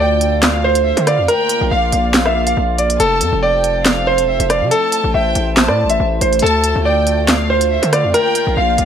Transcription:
0.00 0.93 D2 loud
0.00 1.27 D3 medium
0.00 1.27 A3 medium
0.00 1.27 F4 medium
0.00 0.60 D5 medium
0.00 0.40 G5 medium
0.21 closed hi-hat medium
0.43 0.83 F5 medium
0.43 snare loud
0.43 clap medium
0.43 closed hi-hat medium
0.64 1.05 C5 medium
0.75 closed hi-hat medium
0.85 1.06 E5 medium
0.97 1.20 D3 loud
0.97 closed hi-hat medium
1.07 1.25 D5 medium
1.07 1.27 F5 medium
1.07 cross-stick loud
1.07 closed hi-hat medium
1.18 1.28 F2 loud
1.28 2.98 A#3 medium
1.28 2.98 F4 medium
1.28 1.69 A#4 loud
1.28 2.98 D5 medium
1.28 1.69 G5 loud
1.28 closed hi-hat medium
1.49 closed hi-hat medium
1.61 1.71 A#1 loud
1.71 1.92 A#1 loud
1.71 2.12 F5 medium
1.71 2.22 F5 medium
1.92 2.54 A#1 loud
1.92 closed hi-hat medium
2.14 2.54 F5 medium
2.14 snare loud
2.14 clap medium
2.14 closed hi-hat medium
2.25 2.43 E5 medium
2.25 cross-stick medium
2.47 2.76 F5 medium
2.47 closed hi-hat medium
2.57 2.98 A#1 loud
2.78 2.96 D5 medium
2.78 closed hi-hat medium
2.90 closed hi-hat medium
3.00 3.23 F1 loud
3.00 4.70 F3 medium
3.00 4.70 C4 medium
3.00 3.40 A4 loud
3.00 4.70 A4 medium
3.00 3.40 A5 loud
3.00 closed hi-hat medium
3.21 3.32 F2 loud
3.21 closed hi-hat medium
3.33 4.20 F1 loud
3.43 4.03 D5 medium
3.43 3.83 G5 medium
3.64 closed hi-hat medium
3.85 4.26 F5 medium
3.85 snare loud
3.85 clap loud
3.85 closed hi-hat medium
4.07 4.47 C5 medium
4.18 4.30 E1 loud
4.18 closed hi-hat medium
4.28 4.39 F1 loud
4.28 4.49 E5 medium
4.40 4.63 F1 loud
4.40 closed hi-hat medium
4.50 4.68 D5 medium
4.50 4.70 F5 medium
4.50 cross-stick loud
4.50 closed hi-hat medium
4.61 4.71 C3 loud
4.71 8.11 A3 medium
4.71 6.41 E4 medium
4.71 5.11 A4 loud
4.71 6.41 C5 medium
4.71 5.12 A5 loud
4.71 closed hi-hat medium
4.92 closed hi-hat medium
5.04 5.14 A1 loud
5.14 5.35 A1 loud
5.14 5.65 E5 medium
5.14 5.54 G5 loud
5.35 5.70 A1 loud
5.35 closed hi-hat medium
5.57 5.97 A5 medium
5.57 snare loud
5.57 clap medium
5.57 closed hi-hat medium
5.68 5.86 A2 loud
5.68 5.86 D5 medium
5.68 cross-stick medium
5.84 5.99 A1 loud
5.90 6.19 E5 medium
5.90 closed hi-hat medium
6.00 6.20 A1 loud
6.21 6.42 A1 loud
6.21 6.39 C5 medium
6.21 closed hi-hat medium
6.33 closed hi-hat medium
6.39 6.74 D2 loud
6.39 8.12 D3 medium
6.39 8.85 F4 medium
6.39 6.83 A4 loud
6.39 6.83 A5 loud
6.39 closed hi-hat medium
6.46 closed hi-hat medium
6.64 closed hi-hat medium
6.76 7.79 D2 loud
6.85 7.46 D5 medium
6.85 7.26 G5 medium
7.07 closed hi-hat medium
7.28 7.69 F5 medium
7.28 snare loud
7.28 clap loud
7.28 closed hi-hat medium
7.50 7.90 C5 medium
7.61 closed hi-hat medium
7.71 7.92 E5 medium
7.83 8.06 D3 loud
7.83 closed hi-hat medium
7.93 8.11 D5 medium
7.93 8.13 F5 medium
7.93 cross-stick loud
7.93 closed hi-hat medium
8.04 8.14 F2 loud
8.14 8.85 A#3 medium
8.14 8.54 A#4 loud
8.14 8.85 D5 medium
8.14 8.54 G5 loud
8.14 closed hi-hat medium
8.35 closed hi-hat medium
8.47 8.56 A#1 loud
8.57 8.78 A#1 loud
8.57 8.85 F5 medium
8.78 8.85 A#1 loud
8.78 closed hi-hat medium

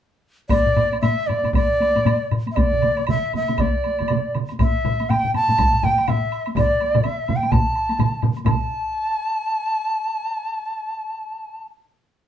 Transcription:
0.49 0.98 D5 medium
0.49 taiko loud
0.49 taiko low-mid medium
0.49 taiko high medium
0.49 high woodblock medium
0.66 taiko low-mid medium
0.76 taiko low-mid medium
0.76 taiko high soft
0.76 high woodblock soft
0.92 taiko high soft
0.92 high woodblock soft
1.01 1.28 E5 medium
1.01 taiko low-mid medium
1.01 taiko high medium
1.01 high woodblock soft
1.27 1.53 D5 medium
1.27 taiko low-mid medium
1.27 taiko high medium
1.27 high woodblock soft
1.44 taiko low-mid medium
1.44 taiko high medium
1.44 high woodblock soft
1.53 2.28 D5 medium
1.53 taiko medium
1.53 taiko low-mid medium
1.53 taiko high medium
1.53 high woodblock medium
1.80 taiko high medium
1.80 high woodblock soft
1.96 taiko low-mid medium
1.96 taiko high medium
1.96 high woodblock soft
2.06 taiko low-mid medium
2.06 taiko high medium
2.06 high woodblock soft
2.31 taiko low-mid medium
2.31 high woodblock soft
2.47 taiko high medium
2.47 high woodblock soft
2.52 2.57 E5 medium
2.56 3.08 D5 medium
2.56 taiko medium
2.56 taiko mid medium
2.56 taiko high medium
2.56 high woodblock soft
2.73 taiko mid medium
2.82 taiko mid medium
2.82 taiko high soft
2.82 high woodblock soft
2.97 taiko high medium
2.97 high woodblock soft
3.07 3.33 E5 medium
3.07 taiko mid medium
3.07 taiko high medium
3.07 high woodblock soft
3.33 3.62 E5 medium
3.33 taiko mid medium
3.33 taiko high medium
3.33 high woodblock soft
3.48 taiko mid medium
3.48 taiko high medium
3.48 high woodblock soft
3.58 4.35 D5 medium
3.58 taiko medium
3.58 taiko mid medium
3.58 taiko high medium
3.58 high woodblock soft
3.84 taiko high medium
3.84 high woodblock soft
3.99 taiko mid medium
3.99 high woodblock soft
4.03 taiko high medium
4.08 taiko mid medium
4.08 taiko high medium
4.08 high woodblock soft
4.35 taiko mid medium
4.35 high woodblock soft
4.49 taiko high soft
4.49 high woodblock soft
4.59 5.11 E5 medium
4.59 taiko medium
4.59 taiko low-mid loud
4.59 taiko high medium
4.59 high woodblock soft
4.85 taiko low-mid medium
4.85 taiko high soft
4.85 high woodblock soft
5.00 taiko high soft
5.00 high woodblock soft
5.10 5.34 G5 medium
5.10 taiko low-mid medium
5.10 taiko high medium
5.10 high woodblock soft
5.24 taiko low-mid medium
5.34 5.85 A5 medium
5.34 taiko low-mid medium
5.34 taiko high medium
5.34 high woodblock soft
5.48 taiko low-mid medium
5.48 taiko high medium
5.48 high woodblock soft
5.58 taiko medium
5.58 taiko low-mid medium
5.58 taiko high medium
5.58 high woodblock soft
5.73 taiko low-mid medium
5.83 6.10 G5 medium
5.83 taiko low-mid medium
5.83 taiko high medium
5.83 high woodblock soft
5.98 taiko high soft
5.98 high woodblock soft
6.08 6.47 E5 medium
6.08 taiko low-mid loud
6.08 taiko high medium
6.08 high woodblock soft
6.32 high woodblock soft
6.46 taiko high soft
6.46 high woodblock soft
6.56 7.05 D5 medium
6.56 taiko medium
6.56 taiko low-mid medium
6.56 taiko mid medium
6.56 taiko high medium
6.56 high woodblock soft
6.80 taiko high soft
6.80 high woodblock soft
6.94 taiko low-mid medium
6.94 taiko mid medium
6.94 taiko high soft
6.94 high woodblock soft
7.03 7.38 E5 medium
7.03 taiko high medium
7.03 high woodblock soft
7.28 taiko low-mid medium
7.28 taiko mid medium
7.28 taiko high medium
7.28 high woodblock soft
7.36 7.53 G5 medium
7.43 taiko high soft
7.43 high woodblock soft
7.51 8.22 A5 medium
7.51 taiko medium
7.51 taiko low-mid medium
7.51 taiko mid medium
7.51 taiko high medium
7.51 high woodblock soft
7.75 high woodblock soft
7.89 taiko high soft
7.89 high woodblock soft
7.99 taiko low-mid medium
7.99 taiko mid medium
7.99 taiko high medium
7.99 high woodblock soft
8.22 taiko low-mid medium
8.22 taiko mid medium
8.22 taiko high soft
8.22 high woodblock soft
8.36 taiko high soft
8.36 high woodblock soft
8.45 11.64 A5 medium
8.45 taiko medium
8.45 taiko low-mid loud
8.45 taiko mid medium
8.45 taiko high medium
8.45 high woodblock medium

